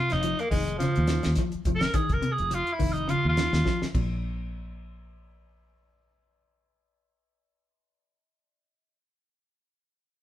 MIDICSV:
0, 0, Header, 1, 7, 480
1, 0, Start_track
1, 0, Tempo, 574163
1, 1617, Time_signature, 4, 2, 24, 8
1, 8545, End_track
2, 0, Start_track
2, 0, Title_t, "Tenor saxophone"
2, 0, Program_c, 0, 66
2, 0, Note_on_c, 0, 65, 94
2, 100, Note_on_c, 0, 63, 85
2, 112, Note_off_c, 0, 65, 0
2, 334, Note_on_c, 0, 58, 76
2, 347, Note_off_c, 0, 63, 0
2, 418, Note_off_c, 0, 58, 0
2, 423, Note_on_c, 0, 56, 78
2, 648, Note_off_c, 0, 56, 0
2, 654, Note_on_c, 0, 53, 93
2, 1121, Note_off_c, 0, 53, 0
2, 1466, Note_on_c, 0, 70, 85
2, 1626, Note_on_c, 0, 68, 73
2, 1638, Note_off_c, 0, 70, 0
2, 1782, Note_on_c, 0, 70, 81
2, 1794, Note_off_c, 0, 68, 0
2, 1939, Note_on_c, 0, 68, 81
2, 1952, Note_off_c, 0, 70, 0
2, 2124, Note_on_c, 0, 65, 78
2, 2137, Note_off_c, 0, 68, 0
2, 2279, Note_on_c, 0, 64, 69
2, 2292, Note_off_c, 0, 65, 0
2, 2443, Note_on_c, 0, 63, 75
2, 2456, Note_off_c, 0, 64, 0
2, 2584, Note_on_c, 0, 65, 82
2, 2597, Note_off_c, 0, 63, 0
2, 2735, Note_off_c, 0, 65, 0
2, 2749, Note_on_c, 0, 65, 89
2, 3208, Note_off_c, 0, 65, 0
2, 8545, End_track
3, 0, Start_track
3, 0, Title_t, "Clean electric guitar"
3, 0, Program_c, 1, 27
3, 0, Note_on_c, 1, 48, 73
3, 133, Note_off_c, 1, 48, 0
3, 198, Note_on_c, 1, 53, 69
3, 376, Note_off_c, 1, 53, 0
3, 432, Note_on_c, 1, 51, 72
3, 612, Note_off_c, 1, 51, 0
3, 670, Note_on_c, 1, 49, 77
3, 850, Note_off_c, 1, 49, 0
3, 915, Note_on_c, 1, 51, 73
3, 1093, Note_off_c, 1, 51, 0
3, 1158, Note_on_c, 1, 53, 78
3, 1335, Note_off_c, 1, 53, 0
3, 1395, Note_on_c, 1, 53, 73
3, 1572, Note_off_c, 1, 53, 0
3, 1623, Note_on_c, 1, 51, 84
3, 1805, Note_off_c, 1, 51, 0
3, 1856, Note_on_c, 1, 48, 71
3, 2040, Note_off_c, 1, 48, 0
3, 2334, Note_on_c, 1, 51, 67
3, 2520, Note_off_c, 1, 51, 0
3, 2571, Note_on_c, 1, 49, 73
3, 2758, Note_off_c, 1, 49, 0
3, 2822, Note_on_c, 1, 51, 72
3, 3004, Note_off_c, 1, 51, 0
3, 3053, Note_on_c, 1, 53, 77
3, 3239, Note_off_c, 1, 53, 0
3, 3300, Note_on_c, 1, 46, 69
3, 3587, Note_off_c, 1, 46, 0
3, 8545, End_track
4, 0, Start_track
4, 0, Title_t, "Fingered electric bass"
4, 0, Program_c, 2, 33
4, 107, Note_on_c, 2, 29, 84
4, 278, Note_off_c, 2, 29, 0
4, 432, Note_on_c, 2, 29, 77
4, 713, Note_off_c, 2, 29, 0
4, 815, Note_on_c, 2, 39, 83
4, 990, Note_off_c, 2, 39, 0
4, 1055, Note_on_c, 2, 39, 87
4, 1128, Note_off_c, 2, 39, 0
4, 1384, Note_on_c, 2, 29, 74
4, 1565, Note_off_c, 2, 29, 0
4, 1752, Note_on_c, 2, 29, 71
4, 1833, Note_off_c, 2, 29, 0
4, 2005, Note_on_c, 2, 29, 81
4, 2183, Note_off_c, 2, 29, 0
4, 2344, Note_on_c, 2, 29, 72
4, 2626, Note_off_c, 2, 29, 0
4, 2716, Note_on_c, 2, 39, 76
4, 2897, Note_off_c, 2, 39, 0
4, 2951, Note_on_c, 2, 39, 76
4, 3032, Note_off_c, 2, 39, 0
4, 3299, Note_on_c, 2, 34, 75
4, 6679, Note_off_c, 2, 34, 0
4, 8545, End_track
5, 0, Start_track
5, 0, Title_t, "Muted clean electric guitar strokes"
5, 2096, Note_on_c, 9, 29, 65
5, 2180, Note_off_c, 9, 29, 0
5, 8545, End_track
6, 0, Start_track
6, 0, Title_t, "Muted fingered electric bass strokes"
6, 1296, Note_on_c, 9, 29, 34
6, 1379, Note_off_c, 9, 29, 0
6, 3198, Note_on_c, 9, 29, 35
6, 3282, Note_off_c, 9, 29, 0
6, 8545, End_track
7, 0, Start_track
7, 0, Title_t, "Drums"
7, 83, Note_on_c, 9, 42, 33
7, 85, Note_on_c, 9, 38, 25
7, 166, Note_off_c, 9, 42, 0
7, 169, Note_off_c, 9, 38, 0
7, 191, Note_on_c, 9, 42, 71
7, 274, Note_off_c, 9, 42, 0
7, 326, Note_on_c, 9, 42, 29
7, 409, Note_off_c, 9, 42, 0
7, 429, Note_on_c, 9, 36, 62
7, 431, Note_on_c, 9, 46, 62
7, 513, Note_off_c, 9, 36, 0
7, 515, Note_off_c, 9, 46, 0
7, 566, Note_on_c, 9, 42, 31
7, 649, Note_off_c, 9, 42, 0
7, 672, Note_on_c, 9, 42, 66
7, 674, Note_on_c, 9, 38, 27
7, 755, Note_off_c, 9, 42, 0
7, 758, Note_off_c, 9, 38, 0
7, 799, Note_on_c, 9, 42, 30
7, 882, Note_off_c, 9, 42, 0
7, 898, Note_on_c, 9, 42, 51
7, 901, Note_on_c, 9, 38, 66
7, 982, Note_off_c, 9, 42, 0
7, 985, Note_off_c, 9, 38, 0
7, 1029, Note_on_c, 9, 42, 30
7, 1031, Note_on_c, 9, 38, 62
7, 1112, Note_off_c, 9, 42, 0
7, 1115, Note_off_c, 9, 38, 0
7, 1133, Note_on_c, 9, 42, 65
7, 1135, Note_on_c, 9, 38, 27
7, 1141, Note_on_c, 9, 36, 60
7, 1216, Note_off_c, 9, 42, 0
7, 1219, Note_off_c, 9, 38, 0
7, 1224, Note_off_c, 9, 36, 0
7, 1269, Note_on_c, 9, 42, 30
7, 1353, Note_off_c, 9, 42, 0
7, 1382, Note_on_c, 9, 36, 62
7, 1382, Note_on_c, 9, 42, 46
7, 1466, Note_off_c, 9, 36, 0
7, 1466, Note_off_c, 9, 42, 0
7, 1511, Note_on_c, 9, 42, 33
7, 1514, Note_on_c, 9, 38, 72
7, 1595, Note_off_c, 9, 42, 0
7, 1598, Note_off_c, 9, 38, 0
7, 1620, Note_on_c, 9, 42, 65
7, 1622, Note_on_c, 9, 36, 77
7, 1703, Note_off_c, 9, 42, 0
7, 1706, Note_off_c, 9, 36, 0
7, 1751, Note_on_c, 9, 42, 29
7, 1754, Note_on_c, 9, 36, 62
7, 1834, Note_off_c, 9, 42, 0
7, 1837, Note_off_c, 9, 36, 0
7, 1860, Note_on_c, 9, 42, 41
7, 1944, Note_off_c, 9, 42, 0
7, 1992, Note_on_c, 9, 42, 28
7, 2076, Note_off_c, 9, 42, 0
7, 2099, Note_on_c, 9, 42, 67
7, 2183, Note_off_c, 9, 42, 0
7, 2231, Note_on_c, 9, 42, 26
7, 2315, Note_off_c, 9, 42, 0
7, 2337, Note_on_c, 9, 46, 57
7, 2340, Note_on_c, 9, 36, 58
7, 2421, Note_off_c, 9, 46, 0
7, 2423, Note_off_c, 9, 36, 0
7, 2472, Note_on_c, 9, 42, 27
7, 2556, Note_off_c, 9, 42, 0
7, 2582, Note_on_c, 9, 42, 62
7, 2666, Note_off_c, 9, 42, 0
7, 2818, Note_on_c, 9, 42, 45
7, 2821, Note_on_c, 9, 38, 64
7, 2902, Note_off_c, 9, 42, 0
7, 2904, Note_off_c, 9, 38, 0
7, 2951, Note_on_c, 9, 38, 62
7, 3035, Note_off_c, 9, 38, 0
7, 3057, Note_on_c, 9, 36, 61
7, 3059, Note_on_c, 9, 38, 43
7, 3141, Note_off_c, 9, 36, 0
7, 3143, Note_off_c, 9, 38, 0
7, 3193, Note_on_c, 9, 38, 46
7, 3277, Note_off_c, 9, 38, 0
7, 3298, Note_on_c, 9, 36, 73
7, 3299, Note_on_c, 9, 49, 60
7, 3382, Note_off_c, 9, 36, 0
7, 3383, Note_off_c, 9, 49, 0
7, 8545, End_track
0, 0, End_of_file